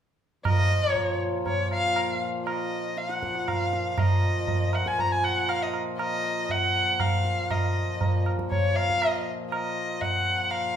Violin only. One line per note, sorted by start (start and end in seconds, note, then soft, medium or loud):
0.45 0.93 D#5 loud
0.93 1.17 C#5 loud
1.47 1.70 C#5 medium
1.72 2.19 F5 loud
2.46 2.99 D#5 medium
2.98 3.11 F5 medium
3.11 3.50 F#5 medium
3.48 3.92 F5 medium
3.92 4.01 F5 medium
3.99 4.77 D#5 medium
4.75 4.89 F#5 medium
4.88 5.02 G#5 medium
5.00 5.08 A#5 medium
5.08 5.26 G#5 medium
5.08 5.13 A#5 medium
5.25 5.51 F#5 medium
5.49 5.64 F5 medium
5.63 5.75 D#5 medium
5.99 6.52 D#5 medium
6.51 7.02 F#5 medium
7.01 7.52 F5 medium
7.51 8.26 D#5 medium
8.51 8.78 C#5 medium
8.76 9.08 F5 loud
9.08 9.26 D#5 loud
9.52 10.03 D#5 medium
10.01 10.52 F#5 medium
10.50 10.76 F5 medium